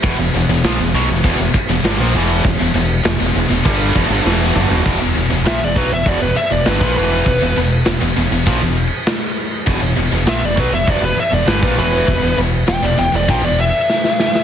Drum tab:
CC |x-x-x-x-x-x-x-x-|x-x-x-x-x-x-----|x-x-x-x-x-x-x-x-|x-x-x-x-x-x-x-x-|
SD |----o-------o---|----o-------o---|----o-------o---|----o-------o---|
T2 |----------------|--------------o-|----------------|----------------|
FT |----------------|---------------o|----------------|----------------|
BD |o-------o-o-----|o-------o-o-----|o-----o-o----o--|o-------o-------|

CC |x-x-x-x-x-x-x-x-|x-x-x-x-x-x-----|
SD |----o-------o---|----o-------oooo|
T2 |----------------|----------------|
FT |----------------|----------------|
BD |o-----o-o----o--|o-------o-------|